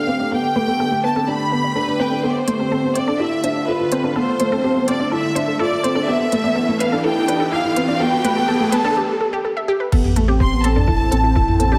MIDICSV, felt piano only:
0, 0, Header, 1, 2, 480
1, 0, Start_track
1, 0, Tempo, 480000
1, 323, Time_signature, 4, 2, 24, 8
1, 11785, End_track
2, 0, Start_track
2, 0, Title_t, "Felt piano"
2, 0, Program_c, 0, 0
2, 68, Note_on_c, 0, 60, 76
2, 178, Note_off_c, 0, 60, 0
2, 190, Note_on_c, 0, 62, 68
2, 299, Note_off_c, 0, 62, 0
2, 314, Note_on_c, 0, 59, 90
2, 526, Note_off_c, 0, 59, 0
2, 555, Note_on_c, 0, 57, 70
2, 662, Note_off_c, 0, 57, 0
2, 673, Note_on_c, 0, 59, 69
2, 775, Note_off_c, 0, 59, 0
2, 790, Note_on_c, 0, 59, 74
2, 899, Note_off_c, 0, 59, 0
2, 912, Note_on_c, 0, 57, 69
2, 1020, Note_off_c, 0, 57, 0
2, 1032, Note_on_c, 0, 59, 68
2, 1140, Note_off_c, 0, 59, 0
2, 1150, Note_on_c, 0, 60, 65
2, 1259, Note_off_c, 0, 60, 0
2, 1271, Note_on_c, 0, 62, 84
2, 1484, Note_off_c, 0, 62, 0
2, 1514, Note_on_c, 0, 59, 72
2, 1725, Note_off_c, 0, 59, 0
2, 1755, Note_on_c, 0, 62, 81
2, 1856, Note_off_c, 0, 62, 0
2, 1871, Note_on_c, 0, 62, 63
2, 1980, Note_off_c, 0, 62, 0
2, 1988, Note_on_c, 0, 60, 73
2, 2098, Note_off_c, 0, 60, 0
2, 2108, Note_on_c, 0, 62, 65
2, 2218, Note_off_c, 0, 62, 0
2, 2232, Note_on_c, 0, 59, 94
2, 2444, Note_off_c, 0, 59, 0
2, 2473, Note_on_c, 0, 57, 75
2, 2581, Note_off_c, 0, 57, 0
2, 2593, Note_on_c, 0, 60, 67
2, 2700, Note_off_c, 0, 60, 0
2, 2715, Note_on_c, 0, 60, 75
2, 2822, Note_off_c, 0, 60, 0
2, 2837, Note_on_c, 0, 59, 72
2, 2943, Note_off_c, 0, 59, 0
2, 2958, Note_on_c, 0, 60, 67
2, 3064, Note_off_c, 0, 60, 0
2, 3079, Note_on_c, 0, 62, 70
2, 3184, Note_off_c, 0, 62, 0
2, 3195, Note_on_c, 0, 64, 88
2, 3406, Note_off_c, 0, 64, 0
2, 3435, Note_on_c, 0, 62, 79
2, 3646, Note_off_c, 0, 62, 0
2, 3681, Note_on_c, 0, 65, 82
2, 3781, Note_off_c, 0, 65, 0
2, 3796, Note_on_c, 0, 65, 71
2, 3903, Note_off_c, 0, 65, 0
2, 3914, Note_on_c, 0, 60, 83
2, 4022, Note_off_c, 0, 60, 0
2, 4038, Note_on_c, 0, 62, 75
2, 4144, Note_off_c, 0, 62, 0
2, 4155, Note_on_c, 0, 59, 93
2, 4366, Note_off_c, 0, 59, 0
2, 4404, Note_on_c, 0, 57, 74
2, 4507, Note_off_c, 0, 57, 0
2, 4521, Note_on_c, 0, 60, 70
2, 4626, Note_off_c, 0, 60, 0
2, 4644, Note_on_c, 0, 60, 78
2, 4747, Note_off_c, 0, 60, 0
2, 4762, Note_on_c, 0, 59, 68
2, 4866, Note_off_c, 0, 59, 0
2, 4885, Note_on_c, 0, 60, 74
2, 4988, Note_off_c, 0, 60, 0
2, 5002, Note_on_c, 0, 62, 75
2, 5106, Note_off_c, 0, 62, 0
2, 5120, Note_on_c, 0, 64, 86
2, 5329, Note_off_c, 0, 64, 0
2, 5356, Note_on_c, 0, 62, 81
2, 5567, Note_off_c, 0, 62, 0
2, 5601, Note_on_c, 0, 65, 86
2, 5703, Note_off_c, 0, 65, 0
2, 5718, Note_on_c, 0, 65, 72
2, 5824, Note_off_c, 0, 65, 0
2, 5842, Note_on_c, 0, 60, 84
2, 5946, Note_off_c, 0, 60, 0
2, 5959, Note_on_c, 0, 62, 79
2, 6064, Note_off_c, 0, 62, 0
2, 6078, Note_on_c, 0, 59, 101
2, 6288, Note_off_c, 0, 59, 0
2, 6323, Note_on_c, 0, 57, 79
2, 6426, Note_off_c, 0, 57, 0
2, 6438, Note_on_c, 0, 59, 73
2, 6542, Note_off_c, 0, 59, 0
2, 6557, Note_on_c, 0, 59, 79
2, 6663, Note_off_c, 0, 59, 0
2, 6683, Note_on_c, 0, 57, 75
2, 6786, Note_off_c, 0, 57, 0
2, 6804, Note_on_c, 0, 59, 71
2, 6907, Note_off_c, 0, 59, 0
2, 6926, Note_on_c, 0, 62, 74
2, 7029, Note_off_c, 0, 62, 0
2, 7046, Note_on_c, 0, 64, 93
2, 7252, Note_off_c, 0, 64, 0
2, 7287, Note_on_c, 0, 62, 83
2, 7492, Note_off_c, 0, 62, 0
2, 7521, Note_on_c, 0, 64, 93
2, 7625, Note_off_c, 0, 64, 0
2, 7644, Note_on_c, 0, 64, 76
2, 7747, Note_off_c, 0, 64, 0
2, 7764, Note_on_c, 0, 60, 86
2, 7867, Note_off_c, 0, 60, 0
2, 7885, Note_on_c, 0, 62, 75
2, 7988, Note_off_c, 0, 62, 0
2, 8003, Note_on_c, 0, 59, 101
2, 8210, Note_off_c, 0, 59, 0
2, 8240, Note_on_c, 0, 57, 78
2, 8345, Note_off_c, 0, 57, 0
2, 8360, Note_on_c, 0, 59, 76
2, 8465, Note_off_c, 0, 59, 0
2, 8480, Note_on_c, 0, 59, 85
2, 8585, Note_off_c, 0, 59, 0
2, 8602, Note_on_c, 0, 57, 80
2, 8706, Note_off_c, 0, 57, 0
2, 8721, Note_on_c, 0, 59, 78
2, 8825, Note_off_c, 0, 59, 0
2, 8841, Note_on_c, 0, 62, 78
2, 8946, Note_off_c, 0, 62, 0
2, 9922, Note_on_c, 0, 59, 91
2, 10130, Note_off_c, 0, 59, 0
2, 10162, Note_on_c, 0, 57, 73
2, 10266, Note_off_c, 0, 57, 0
2, 10280, Note_on_c, 0, 60, 72
2, 10385, Note_off_c, 0, 60, 0
2, 10403, Note_on_c, 0, 60, 82
2, 10507, Note_off_c, 0, 60, 0
2, 10525, Note_on_c, 0, 59, 76
2, 10628, Note_off_c, 0, 59, 0
2, 10644, Note_on_c, 0, 60, 76
2, 10747, Note_off_c, 0, 60, 0
2, 10761, Note_on_c, 0, 62, 79
2, 10865, Note_off_c, 0, 62, 0
2, 10878, Note_on_c, 0, 64, 93
2, 11088, Note_off_c, 0, 64, 0
2, 11116, Note_on_c, 0, 60, 84
2, 11326, Note_off_c, 0, 60, 0
2, 11358, Note_on_c, 0, 64, 93
2, 11464, Note_off_c, 0, 64, 0
2, 11480, Note_on_c, 0, 64, 77
2, 11585, Note_off_c, 0, 64, 0
2, 11602, Note_on_c, 0, 60, 88
2, 11706, Note_off_c, 0, 60, 0
2, 11721, Note_on_c, 0, 62, 76
2, 11785, Note_off_c, 0, 62, 0
2, 11785, End_track
0, 0, End_of_file